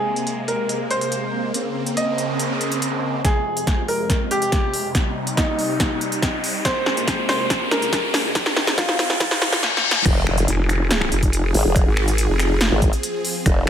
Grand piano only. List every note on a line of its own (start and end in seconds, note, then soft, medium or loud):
0.00 0.40 G#4 medium
0.48 0.77 A#4 medium
0.91 1.46 C5 medium
1.97 3.16 D#5 medium
3.25 3.80 G#4 medium
3.88 4.18 A#4 medium
4.31 4.87 G4 medium
5.37 6.57 D#4 medium
6.65 7.21 C5 loud
7.29 7.58 C5 medium
7.71 8.27 A#4 medium
8.78 9.63 F4 medium